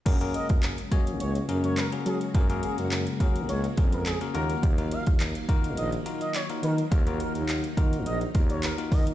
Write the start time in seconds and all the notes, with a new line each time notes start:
0.06 F#2 C#3 G#3 A#3 C#4 F#4 G#4 A#4, kick, closed hi-hat, crash
0.21 A#3 C#4 F#4 G#4 A#4, closed hi-hat
0.34 D#5, closed hi-hat
0.49 F#2, kick, closed hi-hat
0.63 clap, closed hi-hat
0.78 closed hi-hat
0.91 F#3 A#3 C#4 F#4 G#4 C#5, kick, closed hi-hat
1.07 closed hi-hat
1.20 C#2 C#5, closed hi-hat
1.35 closed hi-hat
1.49 F#2 A#3 C#4 F#4 G#4 A#4, closed hi-hat
1.64 C#5, closed hi-hat
1.77 A#4, clap, closed hi-hat
1.92 A#3 C#4 F#4 G#4 A#4, closed hi-hat
2.06 F#3 G#4, closed hi-hat
2.21 closed hi-hat
2.34 F#2 A#3 C#4 F#4 G#4 A#4, kick, closed hi-hat
2.49 A#3 C#4 F#4 G#4 A#4, closed hi-hat
2.63 G#4, closed hi-hat
2.78 F#2, closed hi-hat
2.91 clap, closed hi-hat
3.07 closed hi-hat
3.20 F#3 A#3 C#4 F#4 G#4 A#4, kick, closed hi-hat
3.36 closed hi-hat
3.49 C#2 C#5, closed hi-hat
3.64 closed hi-hat
3.77 F2 A#3 C#4 F#4 G#4 A#4, kick, closed hi-hat
3.92 A#4, closed hi-hat
4.06 G#4, clap, closed hi-hat
4.21 A#3 C#4 F#4 G#4 A#4, closed hi-hat
4.34 D#2 D#3 F#3 A#3 D#4 F4 F#4 A#4 F5, closed hi-hat
4.50 closed hi-hat
4.63 D#2, kick, closed hi-hat
4.78 A#3 D#4 F4 F#4 A#4, closed hi-hat
4.91 F5, closed hi-hat
5.07 D#2, kick, closed hi-hat
5.20 clap, closed hi-hat
5.35 closed hi-hat
5.49 D#3 A#3 D#4 F4 F#4 A#4, kick, closed hi-hat
5.64 closed hi-hat
5.77 A#1 D#5, closed hi-hat
5.92 closed hi-hat
6.06 A#3 D#4 F4 F#4 A#4, closed hi-hat
6.21 D#5, closed hi-hat
6.34 C#5, clap, closed hi-hat
6.49 A#3 D#4 F4 F#4 A#4, closed hi-hat
6.63 D#3 D#4 A#4, closed hi-hat
6.78 closed hi-hat
6.91 D#2 A#3 D#4 F4 F#4 A#4, kick, closed hi-hat
7.07 A#3 D#4 F4 F#4 A#4, closed hi-hat
7.20 A#4, closed hi-hat
7.35 D#2, closed hi-hat
7.49 clap, closed hi-hat
7.64 closed hi-hat
7.77 D#3 A#3 D#4 F4 F#4 A#4, kick, closed hi-hat
7.93 closed hi-hat
8.06 A#1 D#5, closed hi-hat
8.21 closed hi-hat
8.34 D#2 A#3 D#4 F4 F#4 A#4, kick, closed hi-hat
8.50 C#5, closed hi-hat
8.63 A#4, clap, closed hi-hat
8.78 A#3 D#4 F4 F#4 A#4, closed hi-hat
8.92 D#3 D#5, kick, open hi-hat
9.07 closed hi-hat